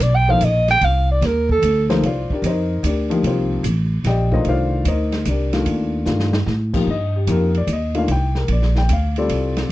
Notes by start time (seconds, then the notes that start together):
0.00 B1 D5, hi-hat pedal, ride
0.16 G5
0.28 F3 A#3 D#4 A4 C5 F5
0.41 A#1 D#5, hi-hat pedal, ride
0.68 G5, snare, ride
0.81 C2 F5, ride
1.12 D5
1.21 D#2, snare, ride
1.26 A#4
1.49 A4, kick
1.62 D2, hi-hat pedal, ride
1.90 F3 A#3 D#4 A4 C5, snare, ride
2.02 C2 C5 F5, ride
2.06 F4 D5
2.30 D4 G4 A#4 D5, muted upright bass stroke, kick
2.42 F2 D#5, hi-hat pedal, ride
2.46 D#4 A#4 C5
2.83 D2 D4 G4 A#4 D5, hi-hat pedal, ride
3.10 F3 A#3 D#4 G4, ride
3.23 C2 F4 C5, ride
3.27 C4 G4
3.63 A1, hi-hat pedal, ride
4.04 A#1 G4 D5 D#5 G5, snare, ride
4.31 D#3 A3 D4 D#4 F4 A#4 C5 D#5, kick
4.45 C2 F5, ride
4.49 F4 C5 D5
4.85 D2 D#4 A#4 C5 D#5, hi-hat pedal, ride
5.12 snare, ride
5.25 C2 D4 G4 A#4 D5, hi-hat pedal, ride
5.53 D#3 A3 D4 F4, snare, ride
5.65 D#2, ride
6.06 G2 D#3 A3 D4 F4, snare, hi-hat pedal
6.20 snare
6.33 snare
6.46 A2, snare
6.73 F3 A#3 D#4 G4, kick, crash
6.87 G2 D#5
7.16 G4
7.27 F2 F3 A#3 D#4 G4, hi-hat pedal, ride
7.31 A#4
7.54 D5, ride
7.67 D#2, hi-hat pedal, ride
7.73 D#5
7.95 D#3 A3 D4 F4 F5, ride
8.08 C2 G5, ride
8.35 A#4, snare
8.48 A#1, ride
8.52 D5
8.62 snare
8.76 G5, snare
8.89 D2, hi-hat pedal, ride
8.93 F5
9.16 G3 C4 F4 A4 D5, ride
9.29 C2, ride
9.57 snare, ride